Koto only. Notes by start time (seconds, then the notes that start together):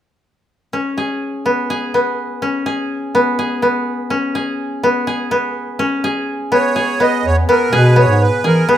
0.73 C#4
0.98 G#4
1.46 B3
1.70 G#4
1.94 B3
2.42 C#4
2.66 G#4
3.15 B3
3.39 G#4
3.62 B3
4.10 C#4
4.35 G#4
4.83 B3
5.07 G#4
5.31 B3
5.79 C#4
6.04 G#4
6.52 B3
6.76 G#4
7.00 B3
7.49 B3
7.73 G#4
7.96 B3
8.44 G#4
8.69 B3